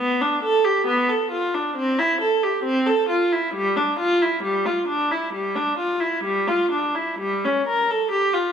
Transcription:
Already playing: B3
0.21 D4
0.43 A4
0.65 G4
0.87 B3
1.09 A4
1.31 F4
1.54 D4
1.76 C4
1.99 E4
2.21 A4
2.43 G4
2.64 C4
2.87 A4
3.09 F4
3.32 E4
3.54 G3
3.76 D4
3.99 F4
4.22 E4
4.43 G3
4.66 F4
4.88 D4
5.11 E4
5.33 G3
5.56 D4
5.78 F4
6.00 E4
6.24 G3
6.47 F4
6.71 D4
6.95 E4
7.19 G3
7.45 C#4
7.68 A#4
7.90 A4
8.11 G4
8.33 F4

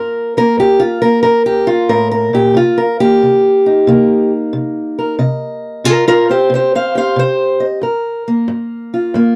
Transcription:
Already playing: G2 A#3 A#4
0.37 A#3 A#4
0.57 G2 G4
0.80 F4
1.02 A#3 A#4
1.23 G2 A#4
1.46 G4
1.67 F4
1.89 A2 A#4
2.11 A#4
2.33 A#2 G4
2.54 C3 F4
2.78 A#4
3.00 A#3 G4
3.22 C3
3.66 D#4
3.87 C3 A#3
4.53 C3
4.99 A#4
5.19 C3 D#5
5.84 C3 F4 A#4
6.08 F4 A#4
6.29 C4 G4 C5
6.50 C3
6.54 G4 C5
6.75 C5 F5
6.95 G4 C5 F5
7.16 C3 C5
7.60 D#5
7.82 G2 A#4
8.28 A#3
8.48 G2
8.94 F4
9.14 G2 A#3

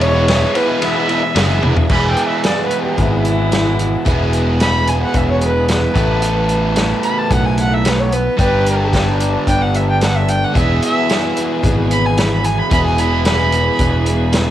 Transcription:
Already playing: E1 E2 B2 E3 G#3 B3 E4 G#4
0.01 C#5, ride
0.14 E3 G#3 B3 E4
0.27 E2 B2 E3 G#3 B3 E4, snare, ride
0.54 E3 G#3 B3 E4 B4, ride
0.68 E3 G#3 B3 E4
0.81 E2 B2 E3 G#3 B3 E4 E5, ride
0.96 E3 G#3 B3 E4
1.08 E3 G#3 B3 E4, ride
1.23 muted overdriven electric guitar stroke
1.35 F#1 E2 B2 E3 G#3 B3 E4, snare, ride
1.62 E1 E3 G#3 B3 E4, high tom
1.76 muted overdriven electric guitar stroke, floor tom
1.89 E1 E2 B2 E3 G#3 B3 E4 G#4 B5, kick, crash
2.10 G5
2.17 closed hi-hat
2.27 E5
2.43 E3 G#3 B3 E4 D5, snare, closed hi-hat
2.65 B4
2.71 closed hi-hat
2.83 G4
2.97 G#1 E2 B2 E3 G#3 B3 E4, kick, closed hi-hat
3.18 E4
3.25 closed hi-hat
3.51 E3 G#3 B3 E4, snare, closed hi-hat
3.79 E3 G#3 B3 E4, closed hi-hat
4.05 E1 E2 B2 E3 G#3 B3 E4 G#4, kick, closed hi-hat
4.33 closed hi-hat
4.59 E3 G#3 B3 E4 B5, snare, closed hi-hat
4.87 G#5, closed hi-hat
5.02 F#5
5.13 E1 E2 B2 E3 G#3 B3 E4 E5, kick, closed hi-hat
5.30 C#5
5.41 B4, closed hi-hat
5.68 E3 G#3 B3 E4 B4, snare, closed hi-hat
5.95 A1 A2 E3 A3 B3 E4 A4, kick, closed hi-hat
6.22 closed hi-hat
6.49 closed hi-hat
6.76 E3 A3 B3 E4, snare, closed hi-hat
7.03 B5, closed hi-hat
7.18 A5
7.31 B1 A2 E3 A3 B3 E4 F#5, kick, closed hi-hat
7.45 G#5
7.58 F#5, closed hi-hat
7.74 E5
7.84 E3 A3 B3 E4 B4, snare, closed hi-hat
7.99 C#5
8.12 B4, closed hi-hat
8.37 G1 G2 D3 G3 B3 D4 G4 A4 B4, kick, closed hi-hat
8.66 closed hi-hat
8.93 G3 B3 D4 A4, kick, snare, closed hi-hat
9.20 closed hi-hat
9.47 G1 G3 B3 D4 A4 G5, kick, closed hi-hat
9.61 F#5
9.74 E5, closed hi-hat
9.90 G5
10.01 G3 B3 D4 A4 F#5, snare, closed hi-hat
10.16 E5
10.28 G5, closed hi-hat
10.43 F#5
10.55 E1 E2 B2 E3 G#3 B3 E4 G#4 E5, kick, closed hi-hat
10.82 E5, closed hi-hat
11.09 E3 B3 E4 G#4, snare, closed hi-hat
11.37 closed hi-hat
11.62 G#1 E2 B2 E3 B3 E4 G#4, kick, closed hi-hat
11.91 B5, closed hi-hat
12.06 G#5
12.17 E3 B3 E4 G#4 B5, snare, closed hi-hat
12.32 B5
12.44 G#5, closed hi-hat
12.58 B5
12.71 E1 E2 B2 E3 B3 E4 G#4 B5, kick, closed hi-hat
12.86 G#5
12.98 B5, closed hi-hat
13.24 E3 B3 E4 G#4 B5, snare, closed hi-hat
13.52 closed hi-hat
13.79 E1 E2 B2 E3 B3 E4 G#4, kick, closed hi-hat
14.06 closed hi-hat
14.32 E3 B3 E4 G#4, snare, closed hi-hat

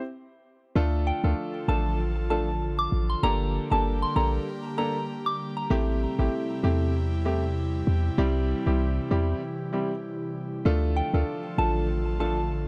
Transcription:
0.75 D2 D3 F3 A3 D4 F4 A4
1.07 G5
1.24 D2 A3 D4 F4 A4
1.68 A1 A3 D4 F4 A4 A5
2.30 A3 D4 F4 A4 A5
2.79 D6
2.92 A1
3.10 C6
3.23 G1 G3 A#3 D4 G4 A4 A#5
3.71 G1 A#3 D4 G4 A4 A5
4.02 C6
4.16 A#1 A#3 D4 G4 A4 A#5
4.77 A#3 D4 G4 A4 A#5
5.26 D6
5.57 A#5
5.70 A1 C3 A3 C4 E4 G4
6.19 A1 A3 C4 E4 G4
6.63 E2 A3 C4 E4 G4
7.25 A3 C4 E4 G4
7.87 E2
8.18 C2 E3 G3 C4 E4 G4
8.66 C2 G3 C4 E4 G4
9.11 E2 G3 C4 E4 G4
9.73 G3 C4 E4 G4
10.65 D2 D3 F3 A3 D4 F4 A4
10.97 G5
11.14 D2 A3 D4 F4 A4
11.58 A1 A3 D4 F4 A4 A5
12.20 A3 D4 F4 A4 A5

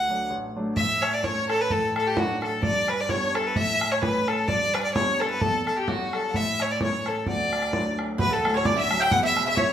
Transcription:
Already playing: D2 F#5
0.09 F#3 A3 D4
0.30 A1
0.56 F#3 A3 D4
0.76 A2 E5, bodhran
1.02 C#5, bodhran
1.12 D5
1.23 E3 A3 C#4 C#5, bodhran
1.49 A4, bodhran
1.60 B4
1.70 A2 A4, bodhran
1.96 A4, bodhran
2.06 G4
2.16 E3 F#3 D4 F#4, bodhran
2.42 A4, bodhran
2.63 G2 D5, bodhran
2.88 B4, bodhran
3.00 D5
3.09 G3 B3 D4 C#5, bodhran
3.35 A4, bodhran
3.47 B4
3.56 A2 E5, bodhran
3.81 bodhran
3.92 C#5, bodhran
4.01 E3 A3 C#4 B4, bodhran
4.28 A4, bodhran
4.48 G2 D5, bodhran
4.74 B4, bodhran
4.83 D5
4.94 G3 B3 D4 C#5, bodhran
5.20 A4, bodhran
5.30 B4
5.41 E2 A4, bodhran
5.66 A4, bodhran
5.75 G4 A4
5.88 F#3 G3 E4 F#4, bodhran
6.13 A4, bodhran
6.30 F#5
6.34 A2 E5, bodhran
6.60 C#5, bodhran
6.71 D5
6.80 E3 A3 C#4 C#5, bodhran
7.06 A4, bodhran
7.27 D2 D5, bodhran
7.53 bodhran
7.62 bodhran
7.73 F#3 A3 D4, bodhran
7.99 bodhran
8.18 D1 D2 B4, bodhran
8.30 A4
8.45 A2, bodhran
8.54 C#5
8.65 D3 D5, bodhran
8.76 E5
8.91 F#3, bodhran
9.00 G5, bodhran
9.11 E1 E2 F#5, bodhran
9.23 E5
9.37 B2, bodhran
9.45 E5
9.56 E3 C#5, bodhran

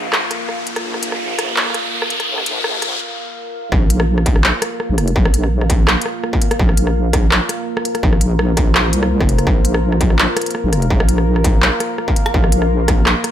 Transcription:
Already playing: A#1 A#3 F4 A#4 F5, riser
0.13 cross-stick, clap
0.31 cross-stick, closed hi-hat
0.49 cross-stick
0.67 closed hi-hat
0.76 cross-stick, closed hi-hat
0.84 A#1
0.94 cross-stick
1.03 closed hi-hat
1.12 cross-stick
1.39 cross-stick, closed hi-hat
1.56 cross-stick, clap
1.61 cross-stick
1.66 cross-stick
1.70 cross-stick
1.74 cross-stick, closed hi-hat
2.02 cross-stick
2.10 closed hi-hat
2.20 cross-stick, closed hi-hat
2.28 A#1
2.38 cross-stick
2.46 closed hi-hat
2.64 cross-stick
2.82 cross-stick, closed hi-hat
3.72 A#1 A#3, kick, cross-stick
3.78 F4
3.90 closed hi-hat
4.00 cross-stick
4.18 cross-stick
4.26 kick, closed hi-hat
4.36 cross-stick
4.44 clap
4.61 F5, cross-stick, closed hi-hat
4.80 cross-stick
4.90 A#1
4.98 F1, cross-stick, closed hi-hat
5.08 closed hi-hat
5.16 A#1, kick
5.25 cross-stick
5.34 closed hi-hat
5.44 cross-stick
5.61 cross-stick
5.70 kick, closed hi-hat
5.88 cross-stick, clap
6.01 closed hi-hat
6.06 cross-stick
6.24 cross-stick
6.33 kick
6.42 closed hi-hat
6.51 cross-stick, closed hi-hat
6.59 A#1, kick
6.69 cross-stick
6.77 closed hi-hat
6.87 cross-stick
7.13 kick, cross-stick, closed hi-hat
7.31 cross-stick, clap
7.48 C5, cross-stick, closed hi-hat
7.77 cross-stick
7.85 closed hi-hat
7.95 cross-stick, closed hi-hat
8.03 A#1, kick
8.13 cross-stick
8.21 closed hi-hat
8.39 cross-stick
8.57 kick, cross-stick, closed hi-hat
8.75 cross-stick, clap
8.93 C2, closed hi-hat
9.03 cross-stick
9.20 F1, kick, cross-stick
9.29 closed hi-hat
9.38 cross-stick, closed hi-hat
9.47 A#1, kick, cross-stick
9.65 closed hi-hat
9.74 cross-stick
9.92 cross-stick
10.01 kick, closed hi-hat
10.10 cross-stick
10.19 clap
10.35 F5, cross-stick, closed hi-hat
10.41 closed hi-hat
10.46 closed hi-hat
10.51 closed hi-hat
10.55 cross-stick
10.64 A#1
10.72 F1, cross-stick, closed hi-hat
10.82 closed hi-hat
10.90 A#1, kick
11.00 cross-stick
11.09 closed hi-hat
11.18 cross-stick
11.36 cross-stick
11.44 kick, closed hi-hat
11.62 clap
11.80 cross-stick, closed hi-hat
11.98 cross-stick
12.08 kick
12.16 closed hi-hat
12.26 cross-stick, closed hi-hat
12.34 A#1, kick
12.44 cross-stick
12.52 closed hi-hat
12.62 cross-stick
12.88 kick, cross-stick, closed hi-hat
13.06 cross-stick, clap
13.24 cross-stick, closed hi-hat

